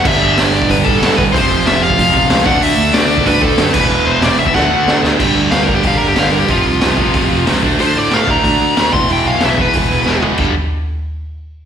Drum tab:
CC |x---------------|----------------|--------------x-|----------------|
HH |----o---o---o---|o---o---o---o---|o---o---o---o---|----o-----------|
SD |----o-------o---|----o-------o---|----o-------o---|----o---o---o-o-|
FT |----------------|----------------|----------------|----------------|
BD |o------oo-o---o-|o------oo-o---o-|-------oo-o---o-|-------oo-------|

CC |x---------------|----------------|----------------|----------------|
HH |----o---o---o---|o---o---o---o---|o---o---o---o---|o---o---o-------|
SD |----o-------o---|----o-------o---|----o-------o---|----o-------o---|
FT |----------------|----------------|----------------|--------------o-|
BD |o-----o-o-------|o-----o-o-----o-|------o-o-----o-|------o-o-------|

CC |x---------------|
HH |----------------|
SD |----------------|
FT |----------------|
BD |o---------------|